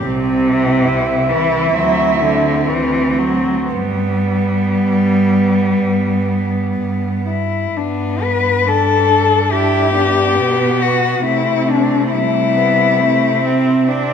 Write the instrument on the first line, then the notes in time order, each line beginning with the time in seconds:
cello
0.03 C2 C3 C4
0.46 E4
0.86 C2 E4
1.29 E3 E4
1.73 D2 F#3 C4
2.20 D3 C4
2.68 D2 E3 C4
3.18 F#3 C4
3.71 G2 G3 B3
4.24 B3
4.78 G2
5.28 B3
5.77 G2
6.27 B3
6.77 G2
7.28 E4
7.76 G2 B3 D4
8.22 B4
8.67 D4 A4
9.51 D4 E4 G4
9.94 B3 D4
10.37 B2 B3
10.82 F#4
11.25 C3 A3 C4 E4
11.70 D4
12.12 G3 A3 E4
12.55 B3
13.00 A3 C4
13.44 C4
13.87 C4 D4